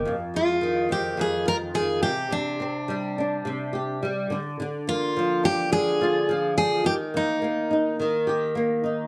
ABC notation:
X:1
M:4/4
L:1/8
Q:"Swing 16ths" 1/4=106
K:Fdor
V:1 name="Steel-string acoustic guitar"
z F2 G A B A G | D6 z2 | z F2 G A3 A | G E3 z4 |]
V:2 name="Nylon-string guitar" clef=bass
F,, A, E, C F,, F E, C, | C, C G, D C, G G, D, | D, B, F, D D, F F, D | E, B, B, E E, G B, E |]